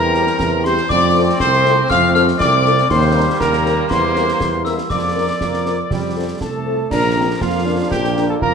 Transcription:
0.00 0.31 E2 loud
0.00 0.86 G3 medium
0.00 0.85 C4 medium
0.00 0.60 A#4 loud
0.00 0.61 A#5 loud
0.00 0.66 A#5 loud
0.14 0.24 G3 medium
0.14 0.24 C4 medium
0.14 0.24 G4 medium
0.14 snare medium
0.27 snare medium
0.40 0.82 E2 loud
0.40 concert bass drum medium
0.40 snare medium
0.64 0.74 G3 medium
0.64 0.74 C4 medium
0.64 0.73 G4 medium
0.64 0.90 C5 loud
0.64 0.88 C6 loud
0.64 0.89 C6 loud
0.64 snare medium
0.77 snare medium
0.89 1.32 F2 loud
0.89 2.90 A3 medium
0.89 2.86 C4 loud
0.89 1.36 D5 loud
0.89 1.36 D6 loud
0.89 concert bass drum medium
0.89 snare medium
0.89 crash soft
1.14 1.23 F3 medium
1.14 1.23 C4 medium
1.14 1.23 A4 medium
1.39 1.82 C2 loud
1.39 1.86 C5 loud
1.39 1.93 C6 loud
1.39 1.87 C6 loud
1.39 concert bass drum medium
1.39 snare medium
1.53 snare medium
1.64 1.74 F3 medium
1.64 1.74 C4 medium
1.64 1.74 A4 medium
1.64 snare medium
1.89 2.32 F2 loud
1.89 2.12 F5 loud
1.89 2.13 F6 loud
1.89 2.15 F6 loud
1.89 concert bass drum medium
1.89 snare medium
2.13 2.24 F3 medium
2.13 2.24 C4 medium
2.13 2.24 A4 medium
2.13 2.25 F5 loud
2.13 2.38 F6 loud
2.13 2.21 F6 loud
2.13 snare medium
2.28 snare medium
2.38 2.82 C2 loud
2.38 2.86 D5 loud
2.38 2.87 D6 loud
2.38 2.92 D6 loud
2.38 concert bass drum medium
2.38 snare medium
2.64 2.74 F3 medium
2.64 2.74 C4 medium
2.64 2.74 A4 medium
2.64 snare medium
2.78 snare medium
2.89 3.27 D#2 loud
2.89 4.87 G3 loud
2.89 4.90 A#3 loud
2.89 3.40 C5 loud
2.89 3.37 C6 loud
2.89 3.43 C6 loud
2.89 concert bass drum medium
2.89 snare medium
2.89 crash soft
3.15 3.24 G3 medium
3.15 3.24 C4 medium
3.15 3.24 A#4 medium
3.40 3.82 D#2 loud
3.40 3.87 A#4 loud
3.40 3.87 A#5 loud
3.40 3.91 A#5 loud
3.40 concert bass drum medium
3.40 snare medium
3.53 snare medium
3.65 3.74 G3 medium
3.65 3.75 C4 medium
3.65 3.74 A#4 medium
3.65 snare medium
3.90 4.32 E2 loud
3.90 4.65 C5 loud
3.90 4.62 C6 loud
3.90 concert bass drum medium
3.90 snare medium
4.15 4.24 G3 medium
4.15 4.24 C4 medium
4.15 4.24 A#4 medium
4.15 snare medium
4.28 snare medium
4.40 4.82 E2 medium
4.40 concert bass drum medium
4.40 snare medium
4.65 4.75 G3 medium
4.65 4.75 C4 medium
4.65 4.74 A#4 medium
4.65 4.76 E5 loud
4.65 4.89 E6 medium
4.65 4.72 E6 medium
4.65 snare medium
4.78 snare medium
4.90 5.32 F2 medium
4.90 5.33 F3 medium
4.90 5.33 A#3 medium
4.90 6.37 D5 loud
4.90 6.37 D6 medium
4.90 6.15 D6 medium
4.90 concert bass drum medium
4.90 snare medium
4.90 crash soft
5.15 5.24 F3 medium
5.15 5.24 A#3 medium
5.15 5.24 A#4 medium
5.40 5.83 F2 medium
5.40 5.77 A#3 medium
5.40 concert bass drum medium
5.40 snare medium
5.54 snare medium
5.65 5.75 F3 medium
5.65 5.74 A#3 medium
5.65 5.75 A#4 medium
5.65 snare medium
5.91 6.33 F2 medium
5.91 6.38 G3 medium
5.91 concert bass drum medium
5.91 snare medium
6.16 6.25 F3 medium
6.16 6.25 C4 medium
6.16 6.26 A4 medium
6.41 6.83 C2 medium
6.41 6.93 A3 medium
6.41 6.88 A4 medium
6.41 6.88 A5 medium
6.41 concert bass drum medium
6.41 snare medium
6.66 6.75 F3 medium
6.66 6.75 C4 medium
6.66 6.76 A4 medium
6.90 7.33 A#1 loud
6.90 8.54 F3 medium
6.90 8.54 A#3 medium
6.90 7.02 D4 medium
6.90 7.38 A#4 loud
6.90 7.43 A#5 medium
6.90 concert bass drum medium
6.90 snare medium
6.90 crash medium
7.16 7.26 F3 medium
7.16 7.27 C4 medium
7.16 7.26 D4 medium
7.16 7.26 A#4 medium
7.40 7.83 F2 medium
7.40 7.67 A#3 medium
7.40 7.88 F4 loud
7.40 7.93 F5 loud
7.40 concert bass drum medium
7.40 snare medium
7.65 7.76 F3 medium
7.65 8.43 D4 medium
7.65 7.75 D4 medium
7.65 7.76 A#4 medium
7.90 8.33 A#1 loud
7.90 8.26 G4 loud
7.90 8.28 G5 loud
7.90 concert bass drum medium
7.90 snare medium
8.04 snare medium
8.16 8.25 F3 medium
8.16 8.25 D4 medium
8.16 8.25 A#4 medium
8.16 snare medium
8.28 8.35 A4 loud
8.28 8.34 A5 medium
8.41 8.54 F2 medium
8.41 8.54 F4 medium
8.41 8.54 A#4 loud
8.41 8.54 A#5 loud
8.41 concert bass drum medium

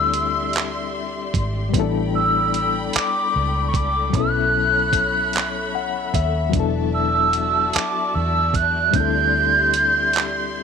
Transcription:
0.00 1.30 D2 loud
0.00 1.68 G3 medium
0.00 1.69 C4 medium
0.00 1.70 D4 medium
0.00 1.71 E4 medium
0.00 1.71 G4 medium
0.00 1.73 A4 medium
0.00 1.70 D5 medium
0.00 1.71 E5 medium
0.00 1.71 C6 medium
0.00 0.91 E6 loud
0.14 closed hi-hat medium
0.53 clap loud
0.53 closed hi-hat medium
1.34 1.70 G#1 loud
1.34 kick medium
1.34 closed hi-hat medium
1.69 4.07 G3 medium
1.69 4.09 B3 medium
1.69 4.11 G5 medium
1.73 2.90 A1 loud
1.73 1.80 C#4 medium
1.73 4.11 E4 medium
1.73 6.50 A4 medium
1.73 4.11 D5 medium
1.73 4.11 B5 medium
1.73 kick loud
1.73 closed hi-hat medium
1.80 4.13 D4 medium
1.80 4.12 A4 medium
2.15 2.51 E6 medium
2.54 2.70 E6 medium
2.54 closed hi-hat medium
2.93 3.64 D6 loud
2.93 muted fingered electric bass stroke soft
2.93 clap loud
2.93 closed hi-hat medium
3.36 4.11 C#2 medium
3.68 3.77 C#6 medium
3.74 4.15 D6 medium
3.74 kick medium
3.74 closed hi-hat medium
4.10 6.47 F#3 medium
4.10 6.49 B3 medium
4.10 6.51 C#5 medium
4.10 10.63 E5 medium
4.10 6.51 B5 medium
4.10 kick loud
4.14 6.10 B1 loud
4.14 6.50 C#4 medium
4.14 6.51 E4 medium
4.14 6.10 F#6 loud
4.14 closed hi-hat medium
4.20 6.53 A4 medium
4.93 kick loud
4.93 closed hi-hat medium
5.33 clap loud
5.33 closed hi-hat medium
5.75 6.12 F#5 medium
6.14 6.50 D#2 medium
6.14 6.52 E5 medium
6.14 kick medium
6.14 closed hi-hat medium
6.49 8.87 F#3 medium
6.49 8.89 B3 medium
6.49 10.63 D5 medium
6.49 8.91 A5 medium
6.53 7.70 E1 loud
6.53 8.90 D4 medium
6.53 8.91 E4 medium
6.53 8.91 F#4 medium
6.53 kick loud
6.53 closed hi-hat medium
6.60 8.93 A4 medium
6.94 7.76 E6 loud
7.33 closed hi-hat medium
7.73 8.14 D6 medium
7.73 muted fingered electric bass stroke soft
7.73 clap loud
7.73 closed hi-hat medium
8.15 8.90 E2 medium
8.15 8.57 E6 loud
8.54 8.97 F#6 loud
8.54 kick medium
8.54 closed hi-hat medium
8.90 10.63 G3 medium
8.90 10.63 C4 medium
8.90 10.63 G4 medium
8.90 10.63 C6 medium
8.90 kick loud
8.90 closed hi-hat medium
8.95 10.63 D2 loud
8.95 10.63 D4 medium
8.95 10.63 E4 medium
8.95 10.63 G6 loud
9.00 10.63 A4 medium
9.74 closed hi-hat medium
10.13 clap loud
10.13 closed hi-hat medium

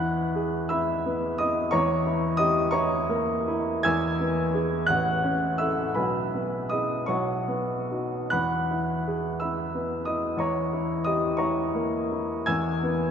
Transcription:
0.00 1.67 E2 medium
0.00 0.57 E4 medium
0.00 0.66 F#5 medium
0.00 0.66 B5 medium
0.00 0.70 F#6 loud
0.36 0.92 G#4 medium
0.69 1.27 E4 medium
0.69 1.36 E5 medium
0.69 1.36 B5 medium
0.69 1.39 E6 medium
1.06 1.60 B3 medium
1.38 1.74 E4 medium
1.38 1.71 D#5 medium
1.38 1.73 D#6 medium
1.71 3.81 E2 medium
1.71 2.35 C#5 medium
1.71 2.35 A#5 medium
1.71 2.38 C#6 medium
2.06 2.59 E4 medium
2.37 2.94 G4 medium
2.37 2.70 D#5 medium
2.37 2.72 D#6 loud
2.71 3.32 E4 medium
2.71 3.81 C#5 medium
2.71 3.81 A#5 medium
2.71 3.84 C#6 medium
3.09 3.71 A#3 medium
3.48 3.86 E4 medium
3.83 4.86 E2 medium
3.83 4.85 G#5 medium
3.83 4.85 E6 medium
3.83 4.88 G#6 loud
4.20 4.75 B3 medium
4.54 4.85 E4 medium
4.54 4.86 G#4 medium
4.87 5.93 A1 medium
4.87 5.55 F#5 medium
4.87 5.58 F#6 loud
5.24 5.81 C#4 medium
5.58 5.93 E4 soft
5.58 5.93 A4 soft
5.58 5.94 E5 medium
5.58 5.96 E6 medium
5.95 7.06 B1 medium
5.95 6.67 B4 medium
5.95 6.67 G#5 medium
5.95 6.71 B5 medium
6.35 6.94 B3 soft
6.70 7.05 E4 soft
6.70 7.05 G#4 soft
6.70 7.06 D#5 medium
6.70 7.08 D#6 medium
7.06 8.29 B1 medium
7.06 8.28 C#5 medium
7.06 8.28 F#5 medium
7.06 8.32 C#6 medium
7.48 8.17 B3 soft
7.91 8.29 D#4 soft
7.91 8.29 F#4 soft
8.30 10.36 E2 medium
8.30 9.37 F#5 medium
8.30 9.37 B5 medium
8.30 9.40 F#6 medium
8.71 9.28 E4 soft
9.08 9.61 G#4 medium
9.40 9.94 E4 soft
9.40 10.03 E5 soft
9.40 10.03 B5 soft
9.40 10.06 E6 medium
9.75 10.27 B3 soft
10.05 10.41 E4 soft
10.05 10.38 D#5 medium
10.05 10.39 D#6 medium
10.37 12.42 E2 medium
10.37 11.02 C#5 medium
10.37 11.02 A#5 medium
10.37 11.06 C#6 medium
10.73 11.26 E4 medium
11.04 11.61 G4 medium
11.04 11.37 D#5 medium
11.04 11.39 D#6 medium
11.37 11.96 E4 medium
11.37 12.43 C#5 medium
11.37 12.43 A#5 medium
11.37 12.46 C#6 medium
11.75 12.34 A#3 medium
12.12 12.48 E4 medium
12.46 13.11 E2 medium
12.46 13.11 G#5 medium
12.46 13.11 E6 medium
12.46 13.11 G#6 medium
12.83 13.11 B3 medium

